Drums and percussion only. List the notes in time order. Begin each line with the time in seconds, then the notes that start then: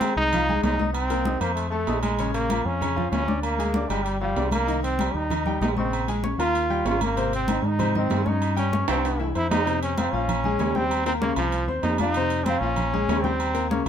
0.01 high conga, low timbale, low agogo
0.17 high conga
0.33 high conga, low conga, low agogo
0.49 high conga, low conga
0.64 high conga, low timbale, low agogo
0.79 high conga
0.95 high conga, low agogo
1.10 high conga, low agogo
1.25 high conga, low timbale
1.41 high conga, low agogo
1.57 high conga, low agogo
1.72 high conga
1.87 high conga, low timbale, low agogo
2.03 high conga, low agogo
2.19 high conga, low agogo
2.34 high conga, low agogo
2.50 high conga, low timbale, low agogo
2.66 high conga
2.82 high conga, low conga, low agogo
2.98 high conga, low conga
3.13 high conga, low timbale, low agogo
3.28 high conga
3.43 high conga, low agogo
3.59 high conga, low agogo
3.74 high conga, low timbale
3.89 high conga, low agogo
4.05 high conga, low agogo
4.21 high conga
4.36 high conga, low timbale, low agogo
4.51 high conga, low agogo
4.68 high conga, low agogo
4.83 high conga, low agogo
4.99 high conga, low timbale, low agogo
5.15 high conga
5.30 high conga, low conga, low agogo
5.46 high conga, low conga
5.61 high conga, low timbale, low agogo
5.77 high conga
5.92 high conga, low agogo
6.08 high conga, low agogo
6.24 high conga, low timbale
6.39 high conga, low agogo
6.55 high conga, low agogo
6.70 high conga
6.86 high conga, low timbale, low agogo
7.01 high conga, low agogo
7.17 high conga, low agogo
7.33 high conga, low agogo
7.48 high conga, low timbale, low agogo
7.64 high conga
7.79 high conga, low conga, low agogo
7.95 high conga, low conga
8.10 high conga, low timbale, low agogo
8.26 high conga
8.41 high conga, low agogo
8.57 high conga, low agogo
8.73 high conga, low timbale
8.88 high conga, high timbale, low agogo
9.04 high conga, high timbale, low agogo
9.20 high conga
9.35 high conga, low agogo
9.51 high conga, low timbale, low agogo
9.67 high conga, low agogo
9.83 high conga, low agogo
9.98 high conga, low timbale, low agogo
10.13 high conga
10.29 high conga, low conga, low agogo
10.44 high conga, low conga
10.59 high conga, low timbale, low agogo
10.75 high conga
10.91 high conga, low agogo
11.06 high conga, low agogo
11.22 high conga, low timbale
11.36 high conga, low agogo
11.52 high conga, low agogo
11.69 high conga
11.83 high conga, low timbale, low agogo
11.98 high conga, low agogo
12.14 high conga, low agogo
12.30 high conga, low agogo
12.46 high conga, low timbale, low agogo
12.62 high conga
12.76 high conga, low conga, low agogo
12.94 high conga, low conga
13.09 high conga, low timbale, low agogo
13.24 high conga
13.40 high conga, low agogo
13.55 high conga, low agogo
13.71 high conga, low timbale